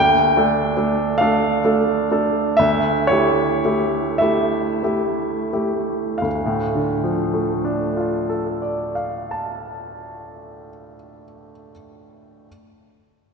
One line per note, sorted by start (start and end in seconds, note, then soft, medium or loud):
0.00 0.34 D2 soft
0.00 1.18 G5 medium
0.37 0.73 A3 soft
0.37 0.73 D4 soft
0.37 0.73 A4 soft
0.77 1.15 A3 soft
0.77 1.15 D4 soft
0.77 1.15 A4 soft
1.18 1.60 A3 soft
1.18 1.60 D4 soft
1.18 1.60 A4 soft
1.18 2.58 F5 medium
1.65 2.07 A3 soft
1.65 2.07 D4 soft
1.65 2.07 A4 soft
2.11 2.55 A3 soft
2.11 2.55 D4 soft
2.11 2.56 A4 soft
2.57 3.08 D2 soft
2.57 3.08 E5 medium
3.07 3.59 A3 soft
3.07 3.60 E4 soft
3.07 3.60 G4 soft
3.07 4.19 C#5 medium
3.65 4.17 A3 soft
3.65 4.18 E4 soft
3.65 4.18 G4 soft
4.18 4.80 A3 soft
4.18 4.80 E4 soft
4.18 4.83 E5 medium
4.22 4.81 G4 soft
4.83 5.50 A3 soft
4.83 5.50 E4 soft
4.83 5.50 G4 soft
5.53 6.19 A3 soft
5.53 6.19 E4 soft
5.53 6.19 G4 soft
6.18 10.70 D2 soft
6.18 8.94 F5 soft
6.46 10.94 A2 soft
6.75 11.23 D3 soft
7.03 11.51 F3 soft
7.34 11.71 A3 soft
7.64 11.71 D4 soft
7.97 11.71 F4 soft
8.29 11.71 A4 soft
8.62 11.71 D5 soft
8.95 11.71 F5 soft
9.31 11.71 A5 soft